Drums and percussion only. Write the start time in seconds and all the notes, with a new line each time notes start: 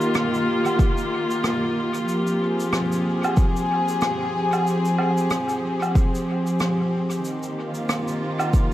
0.01 shaker
0.15 cross-stick, shaker
0.34 shaker
0.66 low woodblock, shaker
0.79 kick, shaker
0.97 shaker
1.31 shaker
1.44 cross-stick, shaker
1.94 shaker
2.09 shaker
2.27 shaker
2.60 shaker
2.73 cross-stick, shaker
2.92 shaker
3.24 low woodblock, shaker
3.37 kick, shaker
3.56 shaker
3.89 shaker
4.01 cross-stick, shaker
4.53 low woodblock, shaker
4.67 shaker
4.85 shaker
4.98 low woodblock
5.17 shaker
5.31 cross-stick, shaker
5.49 shaker
5.82 low woodblock, shaker
5.95 kick, shaker
6.15 shaker
6.47 shaker
6.60 cross-stick, shaker
7.11 shaker
7.25 shaker
7.43 shaker
7.75 shaker
7.89 cross-stick, shaker
8.08 shaker
8.39 low woodblock, shaker
8.53 kick, shaker